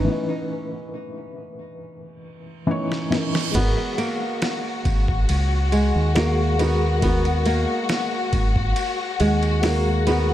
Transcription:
Already playing: felt piano E3 C#4 D#4 B4
0.04 felt piano E3 C#4
0.10 felt piano D#4 B4
1.81 reverse cymbal
2.67 felt piano E3 C#4 D#4
2.71 felt piano C#5
2.92 snare
3.10 felt piano E3 C#4 D#4, snare
3.15 felt piano A#4
3.35 snare
3.52 fingered electric bass G#1, felt piano G#3, nylon-string guitar B3, string section F#4, kick, crash, ride
3.57 felt piano F#4 A#4
3.98 nylon-string guitar A#3, ride
4.42 snare, ride
4.85 fingered electric bass G#1, kick, ride
5.08 kick
5.29 fingered electric bass C#2, ride
5.72 nylon-string guitar G#3, ride
5.96 fingered electric bass D#2
6.15 felt piano G#3 F#4 A#4, nylon-string guitar A#3, snare, ride
6.59 felt piano G#3 F#4 A#4, nylon-string guitar B3, ride
7.00 felt piano G#3, nylon-string guitar B3, kick, ride
7.05 felt piano F#4 A#4
7.25 ride
7.46 nylon-string guitar A#3, ride
7.89 snare, ride
8.33 fingered electric bass G#1, kick, ride
8.56 kick
8.76 ride
9.20 fingered electric bass D#2, nylon-string guitar G#3, ride
9.43 ride
9.62 felt piano G#3 F#4 A#4, nylon-string guitar A#3, snare, open hi-hat
10.07 felt piano G#3 F#4, nylon-string guitar B3, ride
10.11 felt piano A#4

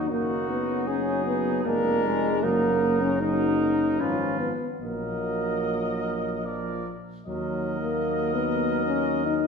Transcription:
Already playing: french horn D#4
0.10 tuba F#1, trombone F#3, french horn A#3, trumpet D#4, cornet F#4
0.50 french horn B3
0.87 french horn C#4, cornet G#4
1.27 french horn B3
1.64 tuba F1, trombone G#3, french horn A#3, trumpet D4, cornet A#4
2.04 french horn G#3
2.42 tuba F#1, trombone F#3, french horn A#3, trumpet D#4, cornet A#4
3.02 french horn C#4
3.21 trombone F#3, french horn D#4, trumpet D#4, cornet A#4
4.00 tuba G#1, trombone F3, french horn C#4, trumpet F4, cornet B4
4.40 french horn B3
4.81 tuba A#1, trombone F#3, french horn A#3, trumpet A#4, cornet D#5
6.45 trombone F3, trumpet A#4, cornet D5
7.27 tuba D#2, trombone F#3, french horn F#3, trumpet A#4, cornet D#5
7.81 french horn A#3
8.33 french horn B3
8.86 french horn C#4
9.26 french horn D#4

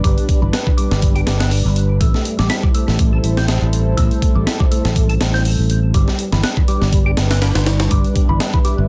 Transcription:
Already playing: analog synth pad G3 D4 B4 D5
0.04 tonewheel organ G3, kick, closed hi-hat
0.18 closed hi-hat
0.29 kick, closed hi-hat
0.42 fingered electric bass G1, tonewheel organ E3
0.53 tonewheel organ B3, snare, closed hi-hat
0.66 tonewheel organ E3, kick
0.78 tonewheel organ G3, closed hi-hat
0.91 fingered electric bass G1, snare
1.02 kick, closed hi-hat
1.16 tonewheel organ G4, closed hi-hat
1.26 fingered electric bass G1, tonewheel organ G3, snare, closed hi-hat
1.40 tonewheel organ B3, snare, closed hi-hat
1.51 open hi-hat
1.65 fingered electric bass G1
1.76 closed hi-hat
2.01 fingered electric bass A1, tonewheel organ A3, analog synth pad E4 A4 C5, kick, closed hi-hat
2.14 snare
2.25 closed hi-hat
2.39 fingered electric bass A1, tonewheel organ G3, snare
2.50 tonewheel organ E4, snare, closed hi-hat
2.63 tonewheel organ G3, kick
2.75 tonewheel organ A3, closed hi-hat
2.88 fingered electric bass A1, snare
2.99 kick, closed hi-hat
3.13 tonewheel organ A4
3.24 fingered electric bass A1, closed hi-hat
3.37 tonewheel organ C4, snare
3.48 snare, closed hi-hat
3.62 fingered electric bass A1
3.73 closed hi-hat
3.97 fingered electric bass A1, tonewheel organ A3, kick, closed hi-hat
4.11 closed hi-hat
4.22 kick, closed hi-hat
4.35 fingered electric bass A1, tonewheel organ G3
4.47 tonewheel organ E4, snare, closed hi-hat
4.60 tonewheel organ G3, kick
4.71 tonewheel organ A3, closed hi-hat
4.85 fingered electric bass A1, snare
4.96 kick, closed hi-hat
5.09 tonewheel organ A4, closed hi-hat
5.21 fingered electric bass A1, snare, closed hi-hat
5.34 tonewheel organ C4, snare
5.45 open hi-hat
5.59 fingered electric bass A1
5.70 closed hi-hat
5.94 fingered electric bass G1, tonewheel organ G3, analog synth pad G3 D4 B4 D5, kick, closed hi-hat
6.08 snare
6.19 closed hi-hat
6.32 fingered electric bass G1, tonewheel organ E3, snare
6.44 tonewheel organ B3, snare, closed hi-hat
6.57 tonewheel organ E3, kick
6.68 tonewheel organ G3, closed hi-hat
6.82 fingered electric bass G1, snare
6.93 kick, closed hi-hat
7.06 tonewheel organ G4
7.17 fingered electric bass G1, snare, closed hi-hat
7.31 tonewheel organ B3, snare, closed hi-hat
7.42 snare, closed hi-hat
7.55 fingered electric bass G1, snare, closed hi-hat
7.66 snare, closed hi-hat
7.80 snare, closed hi-hat
7.91 fingered electric bass G1, tonewheel organ G3, analog synth pad E5, kick, closed hi-hat
8.04 closed hi-hat
8.16 kick, closed hi-hat
8.29 fingered electric bass G1, tonewheel organ E3
8.40 tonewheel organ B3, snare, closed hi-hat
8.54 tonewheel organ E3, kick
8.65 tonewheel organ G3, closed hi-hat
8.78 fingered electric bass G1

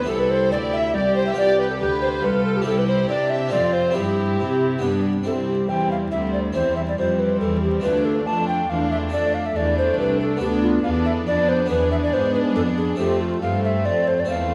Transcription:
Already playing: recorder B4
0.03 harpsichord C4 E4 G4
0.08 harpsichord C2, cello section C2, viola section E4, recorder A4, violin section A4
0.18 violin section B4, recorder B4
0.30 violin section C5, recorder C5
0.51 harpsichord D2, cello section D2, viola section E4, violin section G4 D5, recorder D5
0.72 violin section E5, recorder E5
0.94 harpsichord C2, cello section C2, violin section G4 D5, viola section G4, recorder D5
1.15 violin section C5, recorder C5
1.26 violin section E5, recorder E5
1.33 harpsichord B3 F4 G4
1.37 cello section C2, harpsichord C2, violin section D5, recorder D5
1.59 violin section B4, recorder B4
1.69 violin section A4, recorder A4
1.80 harpsichord D2, cello section D2, violin section G4 B4, recorder G4
2.02 violin section C5, recorder C5
2.22 harpsichord C2, cello section C2, viola section F4, violin section A4 B4, recorder B4
2.45 violin section A4, recorder A4
2.55 violin section G4, recorder G4
2.62 harpsichord C4 E4 G4, viola section E4, violin section A4
2.66 harpsichord C2, cello section C2, violin section G4, recorder A4
2.77 violin section B4, recorder B4
2.87 violin section C5, recorder C5
3.08 cello section C3, harpsichord C3, viola section D4, violin section D5, recorder D5
3.30 recorder E5, violin section E5
3.48 harpsichord C4 F4 A4, viola section C4, violin section F4 D5, recorder D5
3.52 cello section F2, harpsichord F2
3.73 recorder C5, violin section C5
3.91 harpsichord C4 E4 G4
3.95 cello section G2, harpsichord G2, viola section C4, violin section E4 G4, recorder G4
4.39 cello section C3, harpsichord C3
4.78 harpsichord B3 D4 G4
4.83 cello section G2, harpsichord G2, viola section B3, violin section D4
5.23 cello section C2, harpsichord C2 C4 E4, viola section G3, violin section C4 E4, recorder A4
5.48 recorder G4
5.69 cello section E2, harpsichord E2, viola section G3, violin section C4 E4, recorder G5
5.91 recorder F5
6.11 harpsichord D2, cello section D2, viola section G3, violin section C4 E4, recorder E5
6.33 recorder D5
6.53 cello section E2, harpsichord E2 C4 E4, viola section G3, violin section C4 E4, recorder C5
6.76 recorder E5
6.88 recorder D5
6.98 cello section F2, harpsichord F2, viola section G3, violin section C4 E4, recorder C5
7.19 recorder B4
7.40 cello section E2, harpsichord E2, recorder A4
7.62 recorder G4
7.80 cello section D2, harpsichord A3 D4 F4, recorder B4
7.84 harpsichord D2, viola section A3, violin section D4 F4
8.05 recorder A4
8.26 cello section F2, harpsichord F2, viola section A3, violin section D4 F4, recorder A5
8.48 recorder G5
8.70 cello section E2, harpsichord E2, viola section A3, violin section D4 F4, recorder F5
8.91 recorder E5
9.09 harpsichord A3 D4 A4
9.13 cello section F2, harpsichord F2, viola section A3, violin section D4 A4, recorder D5
9.34 recorder F5
9.46 recorder E5
9.56 cello section E2, harpsichord E2, viola section A3, violin section D4 A4, recorder D5
9.78 recorder C5
9.98 harpsichord C2, cello section C2, recorder B4
10.20 recorder A4
10.37 harpsichord B3 D4 A4
10.41 cello section D2, harpsichord D2, viola section B3, violin section D4 A4, recorder G4
10.62 recorder F4
10.84 cello section E2, harpsichord E2, viola section B3, violin section D4 A4, recorder F5
11.06 recorder E5
11.27 harpsichord F2, cello section F2, viola section B3, violin section D4 A4, recorder D5
11.49 recorder C5
11.66 harpsichord B3 D4 G#4
11.70 cello section E2, harpsichord E2, viola section B3, violin section D4 G#4, recorder B4
11.91 recorder E5
12.03 recorder D5
12.13 cello section G#2, harpsichord G#2, recorder C5
12.34 recorder B4
12.56 harpsichord F2, cello section F2, recorder A4
12.77 recorder G#4
12.95 cello section F2, harpsichord A3 C4 A4, recorder G4, violin section A4
12.99 harpsichord F2, viola section A3, violin section C4
13.21 recorder F4
13.42 cello section G2, harpsichord G2, viola section A3, violin section C4 A4, recorder F5
13.64 recorder E5
13.85 cello section F2, harpsichord F2, recorder D5
14.08 recorder C5
14.20 recorder D5
14.25 harpsichord A3 C4 A4, viola section A3
14.29 cello section E2, harpsichord E2, violin section C4 A4, recorder F5

